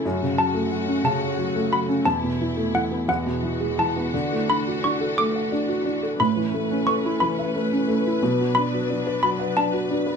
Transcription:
Already playing: C#3
0.04 F#2 A3 F#4
0.22 C#3
0.38 F#3 A5
0.54 A3
0.71 F#3
0.87 C#4
1.04 C#3 A5
1.21 C#5
1.38 F#3
1.55 A3
1.72 F#3 B5
1.89 C#4
2.04 E2 B2 E4 A5
2.23 B2
2.41 E3
2.57 A3
2.74 E3 F#5
2.91 B3
3.07 E2 E3 G#3 F#4 F#5
3.26 B2
3.43 E3
3.60 G#3
3.78 E3 A5
3.96 B3
4.13 D3 D4
4.32 A3
4.49 D4 B5
4.67 F#4
4.84 D4 C#6
5.01 A4
5.18 A3 D6
5.36 F#5
5.52 D4
5.69 F#4
5.86 D4
6.03 A4
6.20 A2 A3 C#4 B4 B5
6.36 E3
6.54 A3
6.71 C#4
6.87 A3 C#6
7.05 E4
7.20 E3 B5
7.39 E5
7.56 A3
7.72 C#4
7.88 A3
8.06 E4
8.22 B2 F#3 D4
8.40 F#3
8.55 D4 B5
8.74 F#4
8.90 D4
9.07 B4
9.23 F#3 B5
9.39 F#5
9.57 D4 A5
9.73 F#4
9.91 D4
10.07 B4

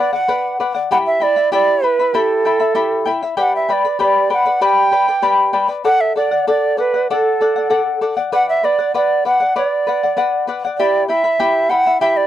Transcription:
Already playing: B4
0.00 D5 F#5
0.13 D5 F#5
0.28 B4 D5 F#5
0.60 B4 D5 F#5
0.74 D5 F#5
0.91 E4 G4 E5 F#5 G5 B5
1.06 E5
1.20 E4 D5 E5 G5 B5
1.36 E4 E5 B5
1.52 E4 G4 D5 E5 G5 B5
1.82 E4 B4 E5 G5 B5
1.99 E4 E5 B5
2.14 E4 G4 A4 E5 G5 B5
2.45 E4 E5 G5 B5
2.59 E4 E5 B5
2.75 E4 G4 E5 G5 B5
3.05 E4 E5 G5 B5
3.23 E4 E5 B5
3.37 G4 B4 D5 F#5 G5 B5
3.56 E5
3.69 B4 D5 G5 B5
3.85 B4 D5 B5
3.99 G4 B4 D5 G5 B5
4.30 B4 D5 F#5 G5 B5
4.46 B4 D5 B5
4.61 G4 B4 D5 G5 B5
4.91 B4 D5 G5 B5
5.08 B4 D5 B5
5.22 G4 B4 D5 G5 B5
5.53 B4 D5 G5 B5
5.68 B4 D5 B5
5.85 A4 D5 F#5
6.01 E5
6.16 A4 D5 F#5
6.31 D5 F#5
6.47 A4 D5 F#5
6.77 A4 B4 D5 F#5
6.94 D5 F#5
7.10 A4 D5 F#5
7.41 A4 D5 F#5
7.56 D5 F#5
7.70 A4 D5 F#5
8.01 A4 D5 F#5
8.17 D5 F#5
8.32 B4 D5 F#5
8.49 E5
8.63 B4 D5 F#5
8.79 D5 F#5
8.94 B4 D5 F#5
9.25 B4 D5 F#5
9.40 D5 F#5
9.56 B4 D5 F#5
9.87 B4 D5 F#5
10.03 D5 F#5
10.17 B4 D5 F#5
10.47 B4 D5 F#5
10.65 D5 F#5
10.78 E4 G4 D5 E5 G5 B5
11.08 E4 E5 G5 B5
11.24 E4 E5 B5
11.40 E4 G4 E5 G5 B5
11.70 E4 E5 F#5 G5 B5
11.86 E4 E5 B5
12.01 E4 G4 E5 G5 B5
12.17 D5

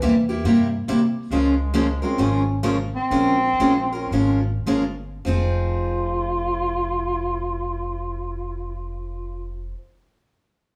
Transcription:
Already playing: E3
0.01 E2 C3 G3 A#3 E4 G4
0.29 A#3 E4 G4
0.44 G2 C3 G3 A#3 E4 G4
0.88 C3 G3 A#3 E4 G4
1.31 C#2 C#3 F3 G#3 C#4 F4 A#4
1.74 C#3 F3 G#3 C#4 F4 A#4
2.02 G#3 C4 C#4 F4 A#4
2.18 G#1 C#3 F3 G#3 C#4 F4 A#4
2.63 C#3 F3 G#3 C#4 F4 A#4
2.95 C4
3.11 A#1 F3 G#3 C#4 F4 A#4
3.59 A#1 F3 G#3 C#4 F4 A#4
3.92 C#4 F4 A#4
4.11 G#1 F3 G#3 C#4 F4 A#4
4.66 G1 F3 G#3 C#4 F4 A#4
5.25 F1 F3 C4 D#4 F4 G#4

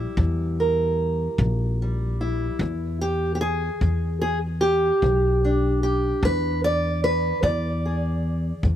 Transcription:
Already playing: G3 E4
0.17 E2 A#2, kick
0.60 A#4
1.38 A#1 C#3, kick
1.82 G3
2.21 E4
2.59 E2, kick
3.01 G4
3.35 G4
3.41 G#4
3.81 E2 G#3, kick
4.22 G#4
4.61 G4
5.02 B1 E2, kick
5.45 D4
5.83 G4
6.23 E2 G#3 B4, kick
6.64 D5
7.04 B4
7.43 E2 D5, kick
7.86 G#4
8.63 E2 G#3, kick

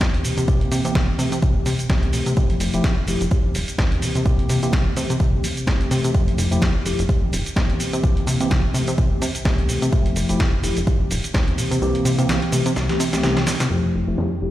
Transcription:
0.00 D#2 E3 A#3 C4 G4, kick, snare, shaker
0.14 closed hi-hat
0.24 C3, open hi-hat, shaker
0.37 C3, closed hi-hat, shaker
0.47 C2 E3 A#3 C4 G4, kick, shaker
0.61 C3, closed hi-hat
0.71 C3, open hi-hat, shaker
0.84 C3 E3 A#3 C4 G4, closed hi-hat, shaker
0.95 C2, kick, snare
1.18 C3 E3 A3 C4 G4, open hi-hat, shaker
1.32 C3, closed hi-hat, shaker
1.42 C2, kick, shaker
1.55 C3 E3 A3 C4 G4
1.66 C3, open hi-hat, shaker
1.79 C2, closed hi-hat, shaker
1.89 C2 E3 A3 C4 G4, kick, snare
2.03 closed hi-hat
2.13 C3, open hi-hat, shaker
2.26 C3, closed hi-hat, shaker
2.37 F2 F3 A3 E4 G4, kick, shaker
2.50 F1, closed hi-hat
2.60 F1, open hi-hat, shaker
2.73 F1 F3 A3 E4 G4, closed hi-hat, shaker
2.84 F2, kick, snare, shaker
3.07 F1 F3 A3 E4 G4, open hi-hat, shaker
3.21 F1, closed hi-hat, shaker
3.31 D#2, kick, shaker
3.44 D#1 F3 C4 D#4 G4
3.55 D#1, open hi-hat, shaker
3.68 D#2, closed hi-hat, shaker
3.78 D#2 E3 A#3 C4 G4, kick, snare, shaker
3.92 closed hi-hat
4.02 C3, open hi-hat, shaker
4.15 C3, closed hi-hat, shaker
4.25 C2 E3 A#3 C4 G4, kick, shaker
4.39 C3, closed hi-hat
4.49 C3, open hi-hat, shaker
4.63 C3 E3 A#3 C4 G4, closed hi-hat, shaker
4.73 C2, kick, snare, shaker
4.96 C3 E3 A3 C4 G4, open hi-hat, shaker
5.10 C3, closed hi-hat, shaker
5.20 C2, kick, shaker
5.33 E3 A3 C4 G4
5.44 C3, open hi-hat, shaker
5.57 closed hi-hat, shaker
5.67 C2 E3 A3 C4 G4, kick, snare, shaker
5.81 closed hi-hat
5.91 C3, open hi-hat, shaker
6.04 C3, closed hi-hat, shaker
6.14 F2 F3 A3 E4 G4, kick, shaker
6.28 F1, closed hi-hat
6.38 F1, open hi-hat, shaker
6.51 F1 F3 A3 E4 G4, closed hi-hat, shaker
6.62 F2, kick, snare, shaker
6.85 F1 F3 A3 E4 G4, open hi-hat, shaker
6.99 F1, closed hi-hat, shaker
7.09 D#2, kick, shaker
7.22 D#1 F3 C4 D#4 G4
7.33 D#1, open hi-hat, shaker
7.46 D#2, closed hi-hat, shaker
7.56 D#2 E3 A#3 C4 G4, kick, snare, shaker
7.70 closed hi-hat
7.80 C3, open hi-hat, shaker
7.93 C3, closed hi-hat, shaker
8.03 C2 E3 A#3 C4 G4, kick, shaker
8.17 C3, closed hi-hat
8.27 C3, open hi-hat, shaker
8.40 C3 E3 A#3 C4 G4, closed hi-hat, shaker
8.51 C2, kick, snare, shaker
8.74 C3 E3 A3 C4 G4, open hi-hat, shaker
8.88 C3, closed hi-hat, shaker
8.98 C2, kick, shaker
9.11 C3 E3 A3 C4 G4
9.22 C3, open hi-hat, shaker
9.35 C2, closed hi-hat, shaker
9.45 C2 E3 A3 C4 G4, kick, snare, shaker
9.58 closed hi-hat
9.69 C3, open hi-hat, shaker
9.82 C3, closed hi-hat, shaker
9.92 F3 A3 E4 G4, kick, shaker
10.06 F1, closed hi-hat
10.16 F1, open hi-hat, shaker
10.29 F1 F3 A3 E4 G4, closed hi-hat, shaker
10.40 F2, kick, snare, shaker
10.63 F1 F3 A3 E4 G4, open hi-hat, shaker
10.77 F1, closed hi-hat, shaker
10.87 D#2, kick, shaker
11.00 D#1 F3 C4 D#4 G4
11.11 D#1, open hi-hat, shaker
11.24 D#2, closed hi-hat, shaker
11.34 D#2 E3 A#3 C4 G4, kick, snare, shaker
11.48 closed hi-hat
11.58 C3, open hi-hat, shaker
11.71 C3, closed hi-hat, shaker
11.81 C2 E3 A#3 C4 G4, shaker
11.95 C3, closed hi-hat
12.05 C3, open hi-hat, shaker
12.18 C3 E3 A#3 C4 G4, closed hi-hat, shaker
12.29 C2, snare, shaker
12.42 closed hi-hat
12.52 C3 E3 A3 C4 G4, open hi-hat, shaker
12.66 C3, closed hi-hat, shaker
12.76 C2, snare, shaker
12.89 C3 E3 A3 C4 G4, snare, closed hi-hat
13.00 C3, open hi-hat, shaker
13.13 C2 E3 A3 C4 G4, snare, closed hi-hat, shaker
13.23 C2 E3 A3 C4 G4, snare, shaker
13.37 snare, closed hi-hat
13.47 C3, snare, open hi-hat, shaker
13.60 C3, snare, closed hi-hat, shaker
13.70 F2 F3 A3 E4 G4
13.84 F1
13.94 F1
14.07 F1 F3 A3 E4 G4
14.18 F2, snare
14.41 F1 F3 A3 E4 G4

